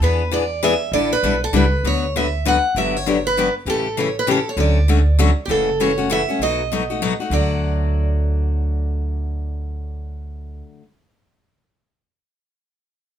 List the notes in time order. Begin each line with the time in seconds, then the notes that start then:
0.00 E2 E3 B3 D4 G#4 B4
0.31 E3 B3 D4 G#4 D5
0.63 E3 B3 D4 G#4 E5
0.92 A1 D3 G3 D4 E4 A4 D5
1.13 B4
1.23 B1 D3 G3 D4 E4 A4
1.44 A4
1.53 C#2 D3 G3 D4 E4 A4 B4
1.84 D2 D3 F#3 B3 F#4 B4 C#5
2.16 D3 F#3 B3 F#4 B4 E5
2.45 D3 F#3 B3 F#4 B4 F#5
2.75 G1 D3 F#3 B3 D4 G4 E5
2.97 C#5
3.06 D3 F#3 B3 D4 G4
3.27 B4
3.37 D3 F#3 B3 D4 G4
3.66 A1 C#3 E3 A3 C#4 G4
3.70 A4
3.97 C#3 E3 A3 C#4 G4 C#5
4.19 B4
4.27 C#3 E3 A3 C#4 G4
4.31 A4
4.49 C#5
4.57 D2 D3 F#3 A3 C#4 F#4 D5
4.88 D3 F#3 A3 C#4 F#4
5.19 D3 F#3 A3 C#4 F#4
5.45 F#1 C#3 E3 G4
5.50 A3 C#4 F#4 A4
5.80 C#3 E3 A3 C#4 F#4 C#5
5.98 A3 C#4 F#4
6.10 C#3 E3 A3 C#4 F#4 E5
6.28 A3 C#4 F#4
6.39 B1 B2 F#3 A3 D#4 F#4 D#5
6.72 B2 F#3 A3 D#4 F#4
6.90 A3 D#4 F#4
7.02 B2 F#3 A3 D#4 F#4
7.20 A3 D#4 F#4
7.30 D2 D3 F#3 A3 D5
7.35 F#4